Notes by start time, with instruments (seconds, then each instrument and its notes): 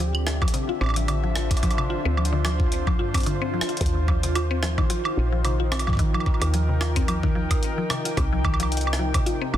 Already playing: fm bass D2, ambient pad D3 C4 D4 G4 E5
0.00 synth arpeggio sound F3
0.15 high woodblock
0.27 cross-stick
0.42 synth arpeggio sound F3, ambient pad F4, kick, high woodblock
0.48 closed hi-hat
0.54 synth arpeggio sound C3, closed hi-hat
0.67 synth arpeggio sound F4, ambient pad C5
0.81 fm bass A1, synth arpeggio sound C4, high woodblock
0.84 high woodblock
0.86 high woodblock
0.89 high woodblock
0.94 synth arpeggio sound F3, closed hi-hat, high woodblock
1.08 synth arpeggio sound D3, closed hi-hat, high woodblock
1.24 synth arpeggio sound F3
1.36 cross-stick
1.51 kick, closed hi-hat, high woodblock
1.57 closed hi-hat, high woodblock
1.63 synth arpeggio sound F3, kick, closed hi-hat, high woodblock
1.71 closed hi-hat, high woodblock
1.78 synth arpeggio sound C3, high woodblock
1.90 synth arpeggio sound F4
2.05 fm bass D2, synth arpeggio sound C4
2.17 synth arpeggio sound F3, high woodblock
2.25 closed hi-hat
2.33 synth arpeggio sound D3
2.45 synth arpeggio sound F3, cross-stick, high woodblock
2.60 kick
2.72 closed hi-hat
2.87 synth arpeggio sound F3, kick, high woodblock
2.99 fm bass G2, synth arpeggio sound F4
3.14 synth arpeggio sound C4, kick, closed hi-hat, high woodblock
3.17 closed hi-hat
3.20 closed hi-hat
3.23 synth arpeggio sound D3, closed hi-hat
3.26 closed hi-hat
3.42 synth arpeggio sound C4
3.54 synth arpeggio sound F3
3.61 cross-stick
3.69 synth arpeggio sound F4, closed hi-hat
3.77 fm bass D#2, kick, closed hi-hat
3.81 ambient pad D#3, closed hi-hat
3.86 closed hi-hat
4.08 synth arpeggio sound F3, kick, high woodblock
4.23 synth arpeggio sound C3, closed hi-hat
4.34 ambient pad D#4, synth arpeggio sound F4, closed hi-hat, high woodblock
4.51 synth arpeggio sound C4
4.63 synth arpeggio sound F3, cross-stick
4.78 synth arpeggio sound D#3, kick, high woodblock
4.90 synth arpeggio sound F3, closed hi-hat
5.05 high woodblock
5.17 fm bass A#1
5.32 synth arpeggio sound F3
5.44 synth arpeggio sound C3, closed hi-hat, high woodblock
5.55 ambient pad A#4
5.60 synth arpeggio sound F4, ambient pad G5
5.72 synth arpeggio sound C4, cross-stick, high woodblock
5.79 closed hi-hat, high woodblock
5.87 synth arpeggio sound F3, kick, high woodblock
5.89 kick
5.93 kick, high woodblock
5.95 kick
5.97 synth arpeggio sound D#3, kick
5.99 kick, closed hi-hat
6.14 synth arpeggio sound F3, high woodblock
6.20 high woodblock
6.26 kick, high woodblock
6.34 high woodblock
6.42 fm bass D#2, closed hi-hat, high woodblock
6.54 synth arpeggio sound F3, closed hi-hat
6.69 synth arpeggio sound C3
6.81 synth arpeggio sound F4, cross-stick, high woodblock
6.96 synth arpeggio sound C4, kick, closed hi-hat
7.08 synth arpeggio sound F3, closed hi-hat, high woodblock
7.23 synth arpeggio sound D#3, kick
7.35 synth arpeggio sound F3
7.51 kick, closed hi-hat, high woodblock
7.63 closed hi-hat
7.78 synth arpeggio sound F3
7.90 synth arpeggio sound C3, cross-stick, high woodblock
8.05 synth arpeggio sound F4, closed hi-hat
8.17 fm bass C2, ambient pad C3, synth arpeggio sound C4, kick, closed hi-hat, high woodblock
8.33 synth arpeggio sound F3
8.44 synth arpeggio sound D#3, kick, high woodblock
8.54 high woodblock
8.60 synth arpeggio sound F3, closed hi-hat, high woodblock
8.72 ambient pad C4, closed hi-hat
8.77 closed hi-hat
8.81 closed hi-hat
8.87 ambient pad G4, high woodblock
8.93 cross-stick
8.99 synth arpeggio sound F3
9.14 synth arpeggio sound C3, kick, closed hi-hat, high woodblock
9.26 synth arpeggio sound F4, closed hi-hat
9.42 synth arpeggio sound C4
9.54 fm bass G1, synth arpeggio sound F3, high woodblock